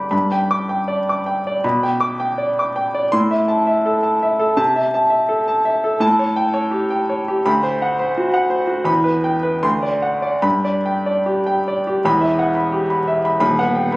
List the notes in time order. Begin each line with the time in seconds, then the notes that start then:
Already playing: G2 D3 D4 D5 G5 B5 D6
0.11 G2 B5
0.32 G5
0.51 D6
0.69 G5
0.88 D5
1.09 D6
1.26 G5
1.47 D5
1.64 B2 B5
1.83 G5
2.00 D6
2.20 G5
2.38 D5
2.59 D6
2.76 G5
2.95 D5
3.12 A2 C6
3.31 E5
3.48 A5
3.67 E5
3.86 A4
4.03 A5
4.23 E5
4.39 A4
4.57 C3 A5
4.76 E5
4.94 A5
5.10 E5
5.29 A4
5.48 A5
5.65 E5
5.84 A4
6.00 A2 A5
6.19 C#5
6.36 G5
6.54 C#5
6.71 G4
6.90 G5
7.09 C#5
7.28 G4
7.46 D2 B5
7.63 C5
7.82 F#5
7.99 C5
8.18 F#4
8.34 F#5
8.50 C5
8.67 F#4
8.84 E2 B5
9.04 B4
9.24 G5
9.43 B4
9.63 D2 C6
9.83 D5
10.02 F#5
10.22 D5
10.42 G2 B5
10.65 D5
10.86 G5
11.06 D5
11.26 G4
11.47 G5
11.68 D5
11.87 G4
12.05 E1 E2 B5
12.21 E5
12.39 F#5
12.55 B5
12.72 G4
12.90 B5
13.08 E5
13.25 B5
13.40 D#1 D#2 B5
13.59 B3 F#5
13.75 G5
13.92 B3 B5